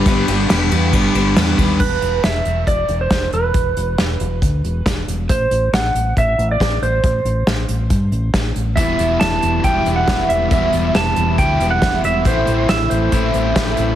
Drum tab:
CC |--------|x-------|--------|--------|
RD |xxxxxxxx|--------|--------|--------|
HH |--------|-xxxxxxx|xxxxxxxx|xxxxxxxx|
SD |--o---o-|--o---o-|--o---o-|--o---o-|
BD |o---o--o|o---o-o-|o---o-o-|o---o-o-|

CC |--------|--------|--------|--------|
RD |--------|--------|--------|--------|
HH |xxxxxxxx|xxxxxxxx|xxxxxxxx|xxxxxxxx|
SD |--o---o-|--o---o-|--o---o-|--o---o-|
BD |o---o-o-|o---o-o-|o---o-o-|o---o-o-|